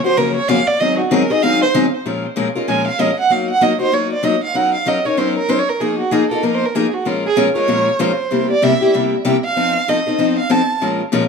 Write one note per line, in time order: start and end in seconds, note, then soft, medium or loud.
0.04 0.16 F3 soft
0.04 0.16 A#3 medium
0.04 0.16 C#4 soft
0.04 0.16 F#4 medium
0.04 0.19 C5 medium
0.17 0.37 F#2 medium
0.17 0.37 C#3 medium
0.17 0.38 F3 medium
0.17 0.38 A#3 medium
0.17 0.38 C#4 medium
0.17 0.38 F#4 medium
0.17 0.36 A#4 medium
0.36 0.50 C#5 medium
0.48 0.60 F#2 medium
0.48 0.60 C#3 medium
0.48 0.60 F3 medium
0.48 0.60 A#3 loud
0.48 0.60 C#4 loud
0.48 0.60 F#4 medium
0.48 0.69 F5 medium
0.67 0.82 D5 medium
0.80 1.00 G#2 medium
0.80 1.00 D#3 medium
0.80 1.00 F#3 medium
0.80 1.01 C4 medium
0.80 1.01 D#4 medium
0.80 1.01 G#4 medium
0.80 0.98 D#5 medium
0.99 1.13 F#4 medium
1.11 1.22 G#2 medium
1.11 1.22 D#3 medium
1.11 1.22 F#3 loud
1.11 1.22 C4 medium
1.11 1.22 D#4 medium
1.11 1.23 G#4 medium
1.11 1.33 A#4 medium
1.30 1.42 F#3 soft
1.30 1.42 C4 soft
1.30 1.42 D#4 medium
1.30 1.42 G#4 medium
1.30 1.44 D#5 medium
1.43 1.63 G#2 medium
1.43 1.63 D#3 medium
1.43 1.63 F#3 medium
1.43 1.63 C4 medium
1.43 1.63 D#4 medium
1.43 1.63 G#4 medium
1.43 1.62 F5 loud
1.62 1.69 C5 loud
1.74 1.85 G#2 medium
1.74 1.85 D#3 medium
1.74 1.85 F#3 medium
1.74 1.85 C4 loud
1.74 1.85 D#4 loud
1.74 1.85 G#4 loud
2.06 2.25 A#2 medium
2.06 2.25 F3 medium
2.06 2.26 G#3 medium
2.06 2.26 C#4 medium
2.06 2.26 F4 medium
2.06 2.26 A#4 medium
2.36 2.47 A#2 medium
2.36 2.47 F3 medium
2.36 2.47 G#3 medium
2.36 2.48 C#4 medium
2.36 2.47 F4 medium
2.36 2.48 A#4 medium
2.55 2.67 G#3 soft
2.55 2.67 C#4 soft
2.55 2.67 F4 medium
2.55 2.67 A#4 medium
2.68 2.88 A#2 medium
2.68 2.88 F3 medium
2.68 2.88 G#3 medium
2.68 2.88 C#4 medium
2.68 2.88 F4 medium
2.68 2.88 A#4 medium
2.68 2.86 G#5 medium
2.88 3.02 F5 medium
2.99 3.10 A#2 medium
2.99 3.10 F3 medium
2.99 3.10 G#3 medium
2.99 3.10 C#4 medium
2.99 3.10 F4 medium
2.99 3.10 A#4 medium
2.99 3.19 D#5 medium
3.20 3.33 F#5 loud
3.30 3.50 F#3 soft
3.30 3.50 A#3 medium
3.30 3.51 D#4 medium
3.30 3.51 F#4 medium
3.30 3.50 F5 medium
3.50 3.64 F#5 loud
3.61 3.72 F#3 medium
3.61 3.72 A#3 medium
3.61 3.73 D#4 medium
3.61 3.73 F#4 medium
3.61 3.80 D#5 medium
3.79 3.91 A#3 soft
3.79 3.91 D#4 soft
3.79 3.92 F#4 medium
3.79 3.95 C5 medium
3.92 4.12 F#3 medium
3.92 4.13 A#3 medium
3.92 4.13 D#4 medium
3.92 4.13 F#4 medium
3.92 4.12 C#5 medium
4.13 4.26 D5 medium
4.23 4.34 F#3 medium
4.23 4.35 A#3 medium
4.23 4.35 D#4 medium
4.23 4.35 F#4 loud
4.23 4.43 D#5 medium
4.44 4.57 F5 medium
4.54 4.75 F#3 medium
4.54 4.75 C#4 medium
4.54 4.76 D#4 medium
4.54 4.76 A#4 medium
4.54 4.74 F#5 medium
4.74 4.89 F5 medium
4.86 4.97 F#3 medium
4.86 4.98 C#4 medium
4.86 4.98 D#4 loud
4.86 4.98 A#4 medium
4.86 5.07 D#5 medium
5.05 5.16 C#4 soft
5.05 5.17 D#4 medium
5.05 5.17 A#4 medium
5.05 5.20 C#5 medium
5.17 5.38 F#3 medium
5.17 5.38 C#4 medium
5.17 5.38 D#4 medium
5.17 5.38 A#4 medium
5.17 5.37 C5 medium
5.38 5.51 A#4 medium
5.49 5.60 F#3 medium
5.49 5.60 C#4 medium
5.49 5.60 D#4 medium
5.49 5.61 A#4 medium
5.49 5.60 C5 medium
5.59 5.71 C#5 medium
5.69 5.82 A#4 medium
5.80 6.01 F3 medium
5.80 6.01 A#3 medium
5.80 6.01 D#4 medium
5.80 6.01 F4 medium
5.80 5.98 G#4 medium
5.80 6.01 A#4 medium
5.99 6.13 F#4 medium
6.11 6.23 F3 medium
6.11 6.23 A#3 medium
6.11 6.23 D#4 medium
6.11 6.23 F4 medium
6.11 6.30 G#4 medium
6.11 6.23 A#4 medium
6.30 6.42 D#4 soft
6.30 6.43 F4 soft
6.30 6.45 A4 medium
6.30 6.42 A#4 medium
6.43 6.63 F3 medium
6.43 6.63 A#3 medium
6.43 6.63 D#4 medium
6.43 6.64 F4 medium
6.43 6.56 A#4 medium
6.43 6.64 A#4 medium
6.55 6.67 C5 medium
6.65 6.77 A#4 medium
6.75 6.86 F3 medium
6.75 6.86 A#3 medium
6.75 6.86 D#4 medium
6.75 6.86 F4 medium
6.75 6.95 G#4 medium
6.75 6.86 A#4 medium
6.94 7.08 F#4 medium
7.05 7.26 A#2 medium
7.05 7.26 F3 medium
7.05 7.26 G#3 medium
7.05 7.26 C#4 medium
7.05 7.26 F4 medium
7.05 7.25 F4 medium
7.05 7.26 A#4 medium
7.26 7.33 G#4 medium
7.36 7.48 A#2 medium
7.36 7.48 F3 medium
7.36 7.48 G#3 medium
7.36 7.48 C#4 loud
7.36 7.48 F4 medium
7.36 7.48 A#4 medium
7.55 7.67 G#3 soft
7.55 7.67 C#4 soft
7.55 7.68 F4 medium
7.55 7.67 A#4 medium
7.55 8.02 C#5 medium
7.68 7.88 A#2 medium
7.68 7.88 F3 medium
7.68 7.88 G#3 medium
7.68 7.89 C#4 medium
7.68 7.89 F4 medium
7.68 7.89 A#4 medium
7.99 8.10 A#2 medium
7.99 8.11 F3 medium
7.99 8.11 G#3 medium
7.99 8.11 C#4 medium
7.99 8.11 F4 medium
7.99 8.11 A#4 loud
7.99 8.50 C5 medium
8.31 8.51 C3 medium
8.31 8.51 G3 medium
8.31 8.51 A#3 medium
8.31 8.51 E4 medium
8.31 8.52 G4 medium
8.51 8.65 D5 medium
8.62 8.73 C3 medium
8.62 8.73 G3 medium
8.62 8.73 A#3 medium
8.62 8.74 E4 medium
8.62 8.74 G4 medium
8.62 8.94 E5 medium
8.81 8.93 A#3 soft
8.81 8.93 E4 medium
8.81 8.93 G4 medium
8.94 9.14 C3 medium
8.94 9.14 G3 medium
8.94 9.14 A#3 medium
8.94 9.14 E4 medium
8.94 9.14 G4 medium
9.25 9.36 C3 medium
9.25 9.36 G3 medium
9.25 9.36 A#3 medium
9.25 9.36 E4 medium
9.25 9.36 G4 loud
9.45 9.91 F5 loud
9.56 9.76 F3 medium
9.56 9.76 C4 medium
9.56 9.77 D#4 medium
9.56 9.77 A4 medium
9.88 9.99 F3 medium
9.88 9.99 C4 medium
9.88 9.99 D#4 medium
9.88 9.99 A4 medium
9.88 10.38 D#5 medium
10.07 10.18 C4 soft
10.07 10.18 D#4 medium
10.07 10.18 A4 medium
10.18 10.39 F3 medium
10.18 10.39 C4 medium
10.18 10.39 D#4 medium
10.18 10.39 A4 medium
10.38 10.53 F5 medium
10.49 10.61 F3 medium
10.49 10.61 C4 medium
10.49 10.61 D#4 medium
10.49 10.61 A4 loud
10.49 10.82 A5 medium
10.81 11.01 A#2 medium
10.81 11.01 F3 medium
10.81 11.01 G#3 medium
10.81 11.02 C#4 medium
10.81 11.02 F4 medium
10.81 11.02 A#4 medium
11.12 11.23 A#2 medium
11.12 11.23 F3 medium
11.12 11.23 G#3 medium
11.12 11.23 C#4 loud
11.12 11.24 F4 medium
11.12 11.24 A#4 medium